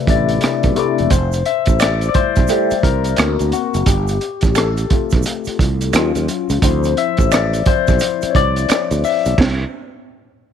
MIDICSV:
0, 0, Header, 1, 6, 480
1, 0, Start_track
1, 0, Tempo, 689655
1, 770, Time_signature, 4, 2, 24, 8
1, 7330, End_track
2, 0, Start_track
2, 0, Title_t, "Clean electric guitar"
2, 0, Program_c, 0, 27
2, 1738, Note_on_c, 0, 57, 71
2, 1741, Note_on_c, 0, 64, 67
2, 1746, Note_on_c, 0, 67, 75
2, 1896, Note_off_c, 0, 57, 0
2, 1898, Note_off_c, 0, 64, 0
2, 1900, Note_off_c, 0, 67, 0
2, 7330, End_track
3, 0, Start_track
3, 0, Title_t, "Tine electric piano"
3, 0, Program_c, 1, 4
3, 0, Control_c, 1, 64, 127
3, 0, Note_on_c, 1, 48, 71
3, 0, Note_on_c, 1, 57, 63
3, 0, Note_on_c, 1, 64, 69
3, 0, Note_on_c, 1, 71, 75
3, 0, Note_on_c, 1, 74, 90
3, 44, Note_off_c, 1, 48, 0
3, 44, Note_on_c, 1, 48, 67
3, 54, Note_off_c, 1, 57, 0
3, 54, Note_on_c, 1, 57, 65
3, 61, Note_on_c, 1, 62, 51
3, 71, Note_off_c, 1, 74, 0
3, 71, Note_on_c, 1, 74, 78
3, 110, Note_off_c, 1, 64, 0
3, 110, Note_on_c, 1, 64, 61
3, 113, Note_off_c, 1, 62, 0
3, 506, Note_off_c, 1, 48, 0
3, 511, Note_off_c, 1, 57, 0
3, 520, Note_off_c, 1, 74, 0
3, 522, Note_on_c, 1, 48, 69
3, 532, Note_on_c, 1, 57, 61
3, 533, Note_off_c, 1, 64, 0
3, 541, Note_on_c, 1, 64, 62
3, 550, Note_on_c, 1, 74, 74
3, 756, Note_off_c, 1, 48, 0
3, 761, Note_off_c, 1, 57, 0
3, 765, Note_off_c, 1, 64, 0
3, 770, Note_off_c, 1, 74, 0
3, 772, Note_on_c, 1, 72, 86
3, 780, Control_c, 1, 64, 0
3, 782, Note_off_c, 1, 71, 0
3, 881, Control_c, 1, 64, 127
3, 1016, Note_on_c, 1, 76, 91
3, 1018, Note_off_c, 1, 72, 0
3, 1237, Note_off_c, 1, 76, 0
3, 1254, Note_on_c, 1, 74, 98
3, 1345, Note_off_c, 1, 74, 0
3, 1452, Note_on_c, 1, 74, 71
3, 1489, Note_off_c, 1, 74, 0
3, 1496, Note_on_c, 1, 72, 89
3, 1502, Note_on_c, 1, 55, 49
3, 1505, Note_on_c, 1, 57, 44
3, 1508, Note_on_c, 1, 64, 58
3, 1840, Note_off_c, 1, 55, 0
3, 1841, Note_off_c, 1, 57, 0
3, 1843, Note_off_c, 1, 64, 0
3, 1946, Note_off_c, 1, 72, 0
3, 1971, Note_on_c, 1, 70, 82
3, 2219, Note_on_c, 1, 58, 54
3, 2220, Control_c, 1, 64, 0
3, 2223, Note_on_c, 1, 60, 51
3, 2227, Note_on_c, 1, 66, 56
3, 2326, Control_c, 1, 64, 127
3, 2449, Note_off_c, 1, 66, 0
3, 2457, Note_on_c, 1, 66, 71
3, 2465, Note_off_c, 1, 70, 0
3, 2671, Note_off_c, 1, 58, 0
3, 2673, Note_off_c, 1, 60, 0
3, 2677, Note_off_c, 1, 66, 0
3, 2696, Note_on_c, 1, 67, 79
3, 2699, Control_c, 1, 64, 0
3, 2823, Control_c, 1, 64, 127
3, 3145, Note_off_c, 1, 67, 0
3, 3173, Note_on_c, 1, 69, 66
3, 3419, Note_on_c, 1, 57, 51
3, 3423, Note_on_c, 1, 60, 48
3, 3424, Note_on_c, 1, 65, 57
3, 4104, Note_off_c, 1, 69, 0
3, 4107, Note_off_c, 1, 57, 0
3, 4109, Note_off_c, 1, 60, 0
3, 4110, Note_off_c, 1, 65, 0
3, 4136, Note_on_c, 1, 54, 58
3, 4140, Control_c, 1, 64, 0
3, 4140, Note_on_c, 1, 61, 53
3, 4141, Note_on_c, 1, 65, 66
3, 4279, Control_c, 1, 64, 127
3, 4589, Note_off_c, 1, 54, 0
3, 4591, Note_off_c, 1, 61, 0
3, 4592, Note_off_c, 1, 65, 0
3, 4618, Note_on_c, 1, 53, 52
3, 4620, Control_c, 1, 64, 0
3, 4622, Note_on_c, 1, 72, 82
3, 4624, Note_on_c, 1, 60, 43
3, 4627, Note_on_c, 1, 64, 53
3, 4734, Control_c, 1, 64, 127
3, 4858, Note_on_c, 1, 76, 91
3, 4864, Note_off_c, 1, 72, 0
3, 5097, Note_on_c, 1, 74, 89
3, 5101, Note_off_c, 1, 76, 0
3, 5203, Note_off_c, 1, 74, 0
3, 5333, Note_off_c, 1, 53, 0
3, 5335, Note_off_c, 1, 60, 0
3, 5339, Note_off_c, 1, 64, 0
3, 5340, Note_on_c, 1, 72, 80
3, 5342, Note_on_c, 1, 53, 43
3, 5344, Note_on_c, 1, 60, 44
3, 5348, Note_on_c, 1, 64, 50
3, 5553, Note_off_c, 1, 53, 0
3, 5554, Note_off_c, 1, 60, 0
3, 5556, Note_off_c, 1, 64, 0
3, 5779, Note_on_c, 1, 73, 55
3, 5793, Note_off_c, 1, 72, 0
3, 5812, Note_off_c, 1, 73, 0
3, 5817, Note_on_c, 1, 74, 88
3, 6296, Note_on_c, 1, 76, 83
3, 6308, Note_off_c, 1, 74, 0
3, 6517, Note_off_c, 1, 76, 0
3, 6539, Control_c, 1, 64, 0
3, 6673, Control_c, 1, 64, 127
3, 7330, End_track
4, 0, Start_track
4, 0, Title_t, "Fretless electric bass"
4, 0, Program_c, 2, 35
4, 54, Note_on_c, 2, 33, 79
4, 266, Note_off_c, 2, 33, 0
4, 447, Note_on_c, 2, 35, 77
4, 524, Note_off_c, 2, 35, 0
4, 696, Note_on_c, 2, 28, 75
4, 768, Note_off_c, 2, 28, 0
4, 772, Note_on_c, 2, 29, 86
4, 985, Note_off_c, 2, 29, 0
4, 1168, Note_on_c, 2, 33, 77
4, 1458, Note_off_c, 2, 33, 0
4, 1653, Note_on_c, 2, 35, 64
4, 1727, Note_off_c, 2, 35, 0
4, 1975, Note_on_c, 2, 36, 80
4, 2187, Note_off_c, 2, 36, 0
4, 2216, Note_on_c, 2, 38, 97
4, 2349, Note_off_c, 2, 38, 0
4, 2369, Note_on_c, 2, 38, 90
4, 2445, Note_off_c, 2, 38, 0
4, 2608, Note_on_c, 2, 30, 87
4, 2684, Note_off_c, 2, 30, 0
4, 2694, Note_on_c, 2, 31, 98
4, 2906, Note_off_c, 2, 31, 0
4, 3085, Note_on_c, 2, 33, 75
4, 3376, Note_off_c, 2, 33, 0
4, 3571, Note_on_c, 2, 35, 75
4, 3646, Note_off_c, 2, 35, 0
4, 3895, Note_on_c, 2, 36, 75
4, 4107, Note_off_c, 2, 36, 0
4, 4131, Note_on_c, 2, 39, 102
4, 4266, Note_off_c, 2, 39, 0
4, 4285, Note_on_c, 2, 39, 84
4, 4362, Note_off_c, 2, 39, 0
4, 4523, Note_on_c, 2, 37, 80
4, 4601, Note_off_c, 2, 37, 0
4, 4611, Note_on_c, 2, 38, 104
4, 4824, Note_off_c, 2, 38, 0
4, 5003, Note_on_c, 2, 33, 81
4, 5295, Note_off_c, 2, 33, 0
4, 5491, Note_on_c, 2, 35, 75
4, 5565, Note_off_c, 2, 35, 0
4, 5814, Note_on_c, 2, 36, 85
4, 6026, Note_off_c, 2, 36, 0
4, 6203, Note_on_c, 2, 38, 79
4, 6281, Note_off_c, 2, 38, 0
4, 6446, Note_on_c, 2, 35, 81
4, 6527, Note_off_c, 2, 35, 0
4, 6532, Note_on_c, 2, 36, 91
4, 6705, Note_off_c, 2, 36, 0
4, 7330, End_track
5, 0, Start_track
5, 0, Title_t, "Muted fretless electric bass strokes"
5, 305, Note_on_c, 9, 29, 41
5, 375, Note_off_c, 9, 29, 0
5, 1499, Note_on_c, 9, 29, 41
5, 1568, Note_off_c, 9, 29, 0
5, 1891, Note_on_c, 9, 29, 47
5, 1960, Note_off_c, 9, 29, 0
5, 3418, Note_on_c, 9, 29, 44
5, 3487, Note_off_c, 9, 29, 0
5, 3808, Note_on_c, 9, 29, 48
5, 3878, Note_off_c, 9, 29, 0
5, 5338, Note_on_c, 9, 29, 44
5, 5407, Note_off_c, 9, 29, 0
5, 5729, Note_on_c, 9, 29, 50
5, 5799, Note_off_c, 9, 29, 0
5, 6053, Note_on_c, 9, 29, 42
5, 6122, Note_off_c, 9, 29, 0
5, 7330, End_track
6, 0, Start_track
6, 0, Title_t, "Drums"
6, 51, Note_on_c, 9, 36, 82
6, 56, Note_on_c, 9, 42, 53
6, 121, Note_off_c, 9, 36, 0
6, 126, Note_off_c, 9, 42, 0
6, 198, Note_on_c, 9, 42, 42
6, 268, Note_off_c, 9, 42, 0
6, 284, Note_on_c, 9, 42, 67
6, 305, Note_on_c, 9, 37, 91
6, 353, Note_off_c, 9, 42, 0
6, 374, Note_off_c, 9, 37, 0
6, 439, Note_on_c, 9, 42, 38
6, 445, Note_on_c, 9, 36, 74
6, 508, Note_off_c, 9, 42, 0
6, 514, Note_off_c, 9, 36, 0
6, 530, Note_on_c, 9, 42, 51
6, 599, Note_off_c, 9, 42, 0
6, 684, Note_on_c, 9, 42, 37
6, 754, Note_off_c, 9, 42, 0
6, 767, Note_on_c, 9, 42, 81
6, 770, Note_on_c, 9, 36, 87
6, 781, Note_on_c, 9, 82, 65
6, 837, Note_off_c, 9, 42, 0
6, 840, Note_off_c, 9, 36, 0
6, 851, Note_off_c, 9, 82, 0
6, 921, Note_on_c, 9, 82, 39
6, 930, Note_on_c, 9, 42, 40
6, 990, Note_off_c, 9, 82, 0
6, 1000, Note_off_c, 9, 42, 0
6, 1012, Note_on_c, 9, 42, 48
6, 1081, Note_off_c, 9, 42, 0
6, 1152, Note_on_c, 9, 42, 44
6, 1163, Note_on_c, 9, 36, 68
6, 1171, Note_on_c, 9, 82, 37
6, 1222, Note_off_c, 9, 42, 0
6, 1233, Note_off_c, 9, 36, 0
6, 1240, Note_off_c, 9, 82, 0
6, 1251, Note_on_c, 9, 26, 56
6, 1251, Note_on_c, 9, 82, 64
6, 1253, Note_on_c, 9, 42, 76
6, 1269, Note_on_c, 9, 37, 93
6, 1321, Note_off_c, 9, 26, 0
6, 1321, Note_off_c, 9, 82, 0
6, 1323, Note_off_c, 9, 42, 0
6, 1339, Note_off_c, 9, 37, 0
6, 1400, Note_on_c, 9, 42, 41
6, 1407, Note_on_c, 9, 82, 36
6, 1469, Note_off_c, 9, 42, 0
6, 1477, Note_off_c, 9, 82, 0
6, 1490, Note_on_c, 9, 42, 56
6, 1495, Note_on_c, 9, 36, 86
6, 1560, Note_off_c, 9, 42, 0
6, 1565, Note_off_c, 9, 36, 0
6, 1640, Note_on_c, 9, 42, 36
6, 1641, Note_on_c, 9, 82, 38
6, 1648, Note_on_c, 9, 36, 85
6, 1660, Note_on_c, 9, 37, 32
6, 1709, Note_off_c, 9, 42, 0
6, 1711, Note_off_c, 9, 82, 0
6, 1718, Note_off_c, 9, 36, 0
6, 1725, Note_on_c, 9, 82, 64
6, 1729, Note_off_c, 9, 37, 0
6, 1734, Note_on_c, 9, 42, 70
6, 1794, Note_off_c, 9, 82, 0
6, 1803, Note_off_c, 9, 42, 0
6, 1885, Note_on_c, 9, 82, 46
6, 1886, Note_on_c, 9, 42, 40
6, 1954, Note_off_c, 9, 82, 0
6, 1955, Note_off_c, 9, 42, 0
6, 1972, Note_on_c, 9, 36, 87
6, 1977, Note_on_c, 9, 42, 57
6, 2041, Note_off_c, 9, 36, 0
6, 2047, Note_off_c, 9, 42, 0
6, 2117, Note_on_c, 9, 42, 43
6, 2133, Note_on_c, 9, 82, 40
6, 2187, Note_off_c, 9, 42, 0
6, 2202, Note_off_c, 9, 82, 0
6, 2202, Note_on_c, 9, 42, 69
6, 2215, Note_on_c, 9, 26, 62
6, 2215, Note_on_c, 9, 82, 59
6, 2223, Note_on_c, 9, 37, 105
6, 2272, Note_off_c, 9, 42, 0
6, 2285, Note_off_c, 9, 26, 0
6, 2285, Note_off_c, 9, 82, 0
6, 2293, Note_off_c, 9, 37, 0
6, 2360, Note_on_c, 9, 42, 39
6, 2369, Note_on_c, 9, 82, 42
6, 2430, Note_off_c, 9, 42, 0
6, 2438, Note_off_c, 9, 82, 0
6, 2449, Note_on_c, 9, 42, 51
6, 2461, Note_on_c, 9, 82, 38
6, 2518, Note_off_c, 9, 42, 0
6, 2531, Note_off_c, 9, 82, 0
6, 2604, Note_on_c, 9, 42, 42
6, 2605, Note_on_c, 9, 82, 41
6, 2673, Note_off_c, 9, 42, 0
6, 2675, Note_off_c, 9, 82, 0
6, 2686, Note_on_c, 9, 42, 78
6, 2689, Note_on_c, 9, 36, 87
6, 2697, Note_on_c, 9, 82, 61
6, 2756, Note_off_c, 9, 42, 0
6, 2759, Note_off_c, 9, 36, 0
6, 2766, Note_off_c, 9, 82, 0
6, 2837, Note_on_c, 9, 82, 41
6, 2845, Note_on_c, 9, 42, 38
6, 2907, Note_off_c, 9, 82, 0
6, 2915, Note_off_c, 9, 42, 0
6, 2930, Note_on_c, 9, 42, 54
6, 2999, Note_off_c, 9, 42, 0
6, 3069, Note_on_c, 9, 42, 44
6, 3081, Note_on_c, 9, 36, 80
6, 3086, Note_on_c, 9, 82, 43
6, 3100, Note_on_c, 9, 37, 26
6, 3139, Note_off_c, 9, 42, 0
6, 3151, Note_off_c, 9, 36, 0
6, 3156, Note_off_c, 9, 82, 0
6, 3168, Note_on_c, 9, 26, 66
6, 3168, Note_on_c, 9, 82, 62
6, 3169, Note_off_c, 9, 37, 0
6, 3171, Note_on_c, 9, 42, 73
6, 3188, Note_on_c, 9, 37, 97
6, 3238, Note_off_c, 9, 26, 0
6, 3238, Note_off_c, 9, 82, 0
6, 3241, Note_off_c, 9, 42, 0
6, 3257, Note_off_c, 9, 37, 0
6, 3322, Note_on_c, 9, 42, 42
6, 3322, Note_on_c, 9, 82, 38
6, 3391, Note_off_c, 9, 42, 0
6, 3392, Note_off_c, 9, 82, 0
6, 3412, Note_on_c, 9, 42, 54
6, 3415, Note_on_c, 9, 36, 88
6, 3481, Note_off_c, 9, 42, 0
6, 3485, Note_off_c, 9, 36, 0
6, 3552, Note_on_c, 9, 82, 43
6, 3564, Note_on_c, 9, 42, 36
6, 3568, Note_on_c, 9, 36, 83
6, 3583, Note_on_c, 9, 37, 31
6, 3621, Note_off_c, 9, 82, 0
6, 3633, Note_off_c, 9, 42, 0
6, 3637, Note_off_c, 9, 36, 0
6, 3637, Note_on_c, 9, 82, 61
6, 3653, Note_off_c, 9, 37, 0
6, 3658, Note_on_c, 9, 42, 79
6, 3707, Note_off_c, 9, 82, 0
6, 3728, Note_off_c, 9, 42, 0
6, 3792, Note_on_c, 9, 82, 41
6, 3808, Note_on_c, 9, 42, 41
6, 3861, Note_off_c, 9, 82, 0
6, 3877, Note_off_c, 9, 42, 0
6, 3892, Note_on_c, 9, 36, 80
6, 3900, Note_on_c, 9, 42, 58
6, 3962, Note_off_c, 9, 36, 0
6, 3969, Note_off_c, 9, 42, 0
6, 4043, Note_on_c, 9, 42, 41
6, 4046, Note_on_c, 9, 82, 42
6, 4112, Note_off_c, 9, 42, 0
6, 4115, Note_off_c, 9, 82, 0
6, 4126, Note_on_c, 9, 42, 68
6, 4130, Note_on_c, 9, 26, 59
6, 4130, Note_on_c, 9, 82, 63
6, 4147, Note_on_c, 9, 37, 104
6, 4196, Note_off_c, 9, 42, 0
6, 4199, Note_off_c, 9, 26, 0
6, 4199, Note_off_c, 9, 82, 0
6, 4217, Note_off_c, 9, 37, 0
6, 4281, Note_on_c, 9, 42, 36
6, 4286, Note_on_c, 9, 82, 43
6, 4351, Note_off_c, 9, 42, 0
6, 4355, Note_off_c, 9, 82, 0
6, 4373, Note_on_c, 9, 42, 56
6, 4380, Note_on_c, 9, 82, 37
6, 4442, Note_off_c, 9, 42, 0
6, 4449, Note_off_c, 9, 82, 0
6, 4521, Note_on_c, 9, 82, 42
6, 4523, Note_on_c, 9, 42, 43
6, 4591, Note_off_c, 9, 82, 0
6, 4592, Note_off_c, 9, 42, 0
6, 4608, Note_on_c, 9, 42, 81
6, 4609, Note_on_c, 9, 36, 84
6, 4615, Note_on_c, 9, 82, 61
6, 4678, Note_off_c, 9, 36, 0
6, 4678, Note_off_c, 9, 42, 0
6, 4685, Note_off_c, 9, 82, 0
6, 4757, Note_on_c, 9, 82, 41
6, 4768, Note_on_c, 9, 42, 37
6, 4827, Note_off_c, 9, 82, 0
6, 4838, Note_off_c, 9, 42, 0
6, 4851, Note_on_c, 9, 42, 52
6, 4921, Note_off_c, 9, 42, 0
6, 4990, Note_on_c, 9, 42, 40
6, 5001, Note_on_c, 9, 36, 77
6, 5010, Note_on_c, 9, 82, 40
6, 5060, Note_off_c, 9, 42, 0
6, 5070, Note_off_c, 9, 36, 0
6, 5079, Note_off_c, 9, 82, 0
6, 5092, Note_on_c, 9, 26, 64
6, 5092, Note_on_c, 9, 42, 69
6, 5092, Note_on_c, 9, 82, 64
6, 5109, Note_on_c, 9, 37, 100
6, 5162, Note_off_c, 9, 26, 0
6, 5162, Note_off_c, 9, 42, 0
6, 5162, Note_off_c, 9, 82, 0
6, 5178, Note_off_c, 9, 37, 0
6, 5243, Note_on_c, 9, 42, 39
6, 5247, Note_on_c, 9, 82, 41
6, 5312, Note_off_c, 9, 42, 0
6, 5317, Note_off_c, 9, 82, 0
6, 5328, Note_on_c, 9, 42, 58
6, 5333, Note_on_c, 9, 36, 90
6, 5397, Note_off_c, 9, 42, 0
6, 5403, Note_off_c, 9, 36, 0
6, 5479, Note_on_c, 9, 82, 38
6, 5481, Note_on_c, 9, 42, 36
6, 5486, Note_on_c, 9, 36, 83
6, 5501, Note_on_c, 9, 37, 33
6, 5549, Note_off_c, 9, 82, 0
6, 5550, Note_off_c, 9, 42, 0
6, 5556, Note_off_c, 9, 36, 0
6, 5563, Note_on_c, 9, 82, 65
6, 5570, Note_off_c, 9, 37, 0
6, 5574, Note_on_c, 9, 42, 83
6, 5633, Note_off_c, 9, 82, 0
6, 5643, Note_off_c, 9, 42, 0
6, 5720, Note_on_c, 9, 82, 42
6, 5725, Note_on_c, 9, 42, 39
6, 5789, Note_off_c, 9, 82, 0
6, 5795, Note_off_c, 9, 42, 0
6, 5811, Note_on_c, 9, 36, 78
6, 5815, Note_on_c, 9, 42, 58
6, 5880, Note_off_c, 9, 36, 0
6, 5885, Note_off_c, 9, 42, 0
6, 5959, Note_on_c, 9, 42, 38
6, 5970, Note_on_c, 9, 82, 44
6, 6029, Note_off_c, 9, 42, 0
6, 6039, Note_off_c, 9, 82, 0
6, 6045, Note_on_c, 9, 42, 68
6, 6053, Note_on_c, 9, 26, 61
6, 6053, Note_on_c, 9, 82, 55
6, 6066, Note_on_c, 9, 37, 102
6, 6115, Note_off_c, 9, 42, 0
6, 6123, Note_off_c, 9, 26, 0
6, 6123, Note_off_c, 9, 82, 0
6, 6136, Note_off_c, 9, 37, 0
6, 6199, Note_on_c, 9, 42, 39
6, 6206, Note_on_c, 9, 82, 43
6, 6269, Note_off_c, 9, 42, 0
6, 6276, Note_off_c, 9, 82, 0
6, 6289, Note_on_c, 9, 46, 39
6, 6296, Note_on_c, 9, 82, 37
6, 6359, Note_off_c, 9, 46, 0
6, 6365, Note_off_c, 9, 82, 0
6, 6442, Note_on_c, 9, 42, 42
6, 6442, Note_on_c, 9, 82, 44
6, 6512, Note_off_c, 9, 42, 0
6, 6512, Note_off_c, 9, 82, 0
6, 6528, Note_on_c, 9, 49, 73
6, 6529, Note_on_c, 9, 36, 95
6, 6548, Note_on_c, 9, 38, 99
6, 6598, Note_off_c, 9, 36, 0
6, 6598, Note_off_c, 9, 49, 0
6, 6617, Note_off_c, 9, 38, 0
6, 7330, End_track
0, 0, End_of_file